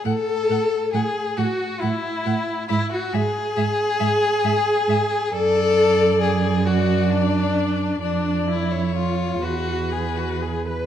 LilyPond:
<<
  \new Staff \with { instrumentName = "Violin" } { \time 12/8 \key d \lydian \tempo 4. = 45 fis''8 fis''8 fis''8 fis''8 fis''8 fis''8 e''8 e''8 e''8 e''8 e''8 e''8 | d''4. d''4. d''8. cis''8. b'4. | }
  \new Staff \with { instrumentName = "Viola" } { \time 12/8 \key d \lydian a'4 gis'8 fis'8 e'4 e'16 fis'16 gis'2~ gis'8 | a'4 gis'8 fis'8 d'4 d'8 e'8 f'8 fis'8 gis'16 fis'16 gis'16 b'16 | }
  \new Staff \with { instrumentName = "Violin" } { \time 12/8 \key d \lydian a'4 gis'8 fis'8 e'4 e'16 fis'16 gis'2~ gis'8 | a'4 gis'8 fis'8 d'4 d'8 e'8 f'8 fis'8 gis'16 fis'16 gis'16 b'16 | }
  \new Staff \with { instrumentName = "Cello" } { \clef bass \time 12/8 \key d \lydian a,8 a,8 a,8 a,8 a,8 a,8 gis,8 gis,8 gis,8 gis,8 gis,8 gis,8 | fis,2. f,4. e,4. | }
>>